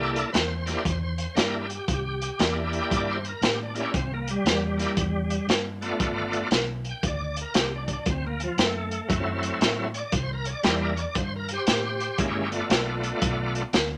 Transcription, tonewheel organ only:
0.00 0.30 A#3 medium
0.00 0.30 D4 medium
0.00 0.30 E4 medium
0.00 0.16 G4 loud
0.00 0.30 A4 medium
0.33 0.36 B4 medium
0.37 1.35 C5 loud
0.66 0.83 A#3 medium
0.66 0.83 D4 medium
0.66 0.83 E4 medium
0.66 0.84 G4 medium
1.35 1.66 A#3 medium
1.35 1.66 D4 medium
1.35 1.67 E4 medium
1.35 1.57 G4 medium
1.41 1.56 A#4 medium
1.58 1.73 G4 medium
1.75 1.90 G4 medium
1.88 1.92 F#4 medium
1.93 2.40 G4 loud
2.39 3.18 A#3 medium
2.39 3.18 D4 medium
2.39 3.18 E4 medium
2.39 3.18 G4 medium
2.78 2.93 G5 loud
2.94 3.10 D5 loud
3.11 3.26 C5 medium
3.28 3.43 A#4 loud
3.44 3.60 G4 medium
3.62 3.74 D4 medium
3.75 3.92 A#3 medium
3.75 3.95 C#4 medium
3.75 3.92 D4 medium
3.75 3.92 E4 medium
3.75 3.93 G4 medium
3.96 4.12 C4 medium
4.14 4.29 A#3 medium
4.30 4.46 G3 medium
4.77 4.95 A#3 medium
4.77 4.95 D4 medium
4.77 4.95 E4 medium
4.77 4.96 G4 medium
5.81 6.48 A3 medium
5.81 6.48 B3 medium
5.81 6.48 D4 medium
5.81 6.49 F4 medium
6.89 7.04 G5 medium
7.07 7.22 D5 loud
7.24 7.39 D5 medium
7.41 7.56 A#4 medium
7.58 7.73 G4 medium
7.76 7.91 D4 medium
7.93 8.08 D4 medium
8.10 8.25 C4 loud
8.27 8.42 A#3 medium
8.44 8.59 F3 medium
8.60 9.08 A3 loud
9.09 9.87 F#3 medium
9.09 9.87 A3 medium
9.09 9.88 C4 medium
9.09 9.88 E4 medium
9.94 9.98 C#5 medium
9.99 10.14 D5 loud
10.16 10.31 C5 loud
10.33 10.48 A#4 medium
10.47 10.50 C#5 medium
10.51 10.66 D5 loud
10.63 10.94 G3 medium
10.63 10.94 A#3 medium
10.63 10.94 D4 medium
10.63 10.95 E4 medium
10.68 10.83 C5 loud
10.84 10.99 A#4 medium
10.96 11.00 C#5 medium
11.01 11.16 D5 loud
11.18 11.34 C5 loud
11.36 11.51 A#4 medium
11.52 12.50 G4 medium
11.52 12.19 C5 loud
12.18 12.48 G#3 medium
12.18 12.49 A#3 medium
12.18 12.49 C#4 medium
12.18 12.49 E4 medium
12.51 13.62 A3 medium
12.51 13.62 B3 medium
12.51 13.63 D4 medium
12.51 13.63 F4 medium

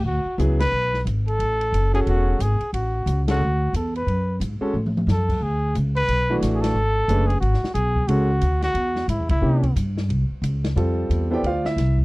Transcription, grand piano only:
0.38 0.57 F#3 medium
0.38 0.58 B3 medium
0.38 0.58 E4 medium
0.38 0.58 G#4 medium
1.93 2.37 C#4 medium
1.93 2.38 F#4 medium
1.93 2.37 G#4 medium
1.93 2.38 A4 medium
3.28 3.39 G#3 medium
3.28 3.39 C#4 medium
3.28 3.39 F#4 medium
3.28 3.39 A4 medium
4.61 4.73 G#3 medium
4.61 4.73 C#4 medium
4.61 4.73 F#4 medium
4.61 4.73 A4 medium
6.30 6.73 E3 medium
6.30 6.73 A3 medium
6.30 6.73 D4 medium
6.30 6.73 F#4 medium
7.09 7.27 A3 medium
7.09 7.27 D4 medium
7.09 7.27 G#4 medium
7.09 7.27 B4 medium
8.09 8.27 G#3 medium
8.09 8.27 C#4 medium
8.09 8.27 F#4 soft
8.09 8.28 A4 medium
9.41 9.61 A#3 medium
9.41 9.61 C#4 medium
9.41 9.61 E4 soft
9.41 9.61 G4 medium
10.76 11.26 G3 medium
10.76 11.27 C4 medium
10.76 11.27 F4 medium
10.76 11.27 A4 medium
11.31 11.42 B3 medium
11.31 11.42 E4 medium
11.31 11.45 G4 medium
11.31 11.42 A4 medium
11.31 11.42 C5 medium
11.31 11.45 D5 medium
11.31 11.45 G5 medium
11.46 11.65 F4 medium
11.46 11.65 C5 medium
11.46 11.66 D5 medium
11.46 11.65 F5 medium
11.66 11.97 E4 medium
11.66 11.96 E5 medium

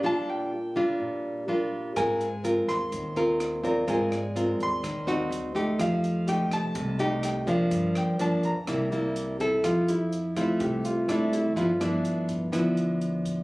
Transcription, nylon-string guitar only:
0.03 0.97 A#2 medium
0.03 0.51 G3 soft
0.03 0.51 D4 medium
0.03 0.52 F4 medium
0.76 1.44 G3 medium
0.76 1.44 D4 medium
0.76 1.44 F4 medium
1.00 1.93 A#2 soft
1.48 1.94 G3 soft
1.48 1.94 D4 soft
1.48 1.94 F4 medium
1.96 2.90 G#3 medium
1.96 2.27 C4 soft
1.96 2.27 F4 medium
1.96 2.27 A#4 medium
2.44 3.12 C4 medium
2.44 3.12 F4 medium
2.44 3.12 A#4 medium
2.92 3.85 D#3 medium
3.16 3.60 C4 medium
3.16 3.60 F4 medium
3.16 3.61 A#4 medium
3.64 3.84 C4 medium
3.64 3.84 F4 medium
3.64 3.84 A#4 medium
3.87 4.81 G#3 medium
3.87 4.18 C4 medium
3.87 4.19 F4 medium
3.87 4.19 A#4 medium
4.36 4.83 C4 medium
4.36 4.84 F4 soft
4.36 4.84 A#4 medium
4.83 5.29 D#3 medium
5.07 5.51 C4 medium
5.07 5.52 D#4 medium
5.07 5.52 F#4 medium
5.55 6.23 A3 medium
5.55 6.24 D#4 medium
5.55 6.24 G4 medium
5.79 6.73 F3 medium
6.27 6.96 A3 soft
6.27 6.96 D#4 soft
6.27 6.96 G4 medium
6.76 7.69 C3 soft
6.99 7.44 A3 medium
6.99 7.44 D#4 medium
6.99 7.44 G4 medium
7.47 8.16 F3 medium
7.47 8.16 A#3 medium
7.47 8.16 D4 medium
7.71 8.65 G2 medium
8.19 8.52 F3 soft
8.19 8.52 A#3 medium
8.19 8.52 D4 medium
8.68 9.62 C3 soft
8.68 8.88 G3 medium
8.68 8.88 A#3 medium
8.68 8.88 E4 medium
8.92 9.36 G3 medium
8.92 9.36 A#3 medium
8.92 9.37 E4 medium
9.40 10.08 C4 medium
9.40 10.09 E4 medium
9.40 10.09 A4 medium
9.64 10.58 F3 soft
10.37 11.05 A3 medium
10.37 11.05 C4 medium
10.37 11.05 E4 medium
10.60 11.54 C3 medium
11.08 11.53 A3 medium
11.08 11.53 C4 medium
11.08 11.53 E4 medium
11.56 12.50 G2 medium
11.56 11.70 F3 medium
11.56 11.71 B3 soft
11.56 11.71 E4 medium
11.80 12.49 F3 medium
11.80 12.49 B3 medium
11.80 12.49 E4 medium
12.52 13.43 D3 soft
12.52 13.43 F3 medium
12.52 13.43 B3 medium
12.52 13.43 E4 medium

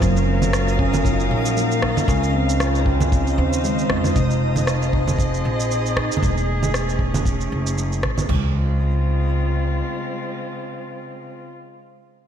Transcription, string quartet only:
0.00 2.08 F#3 medium
0.00 2.92 A#4 medium
0.00 0.85 C5 medium
0.00 4.99 F5 medium
2.08 4.15 C#3 medium
2.52 4.99 C5 medium
4.15 6.22 F3 medium
4.46 8.29 G#4 medium
4.58 7.06 D#5 medium
4.66 6.23 C4 medium
6.22 8.29 A3 medium
6.69 8.29 C#4 medium
8.29 11.30 C#3 medium
8.38 11.38 G#3 medium
8.46 11.46 C4 medium
8.53 11.53 F4 medium

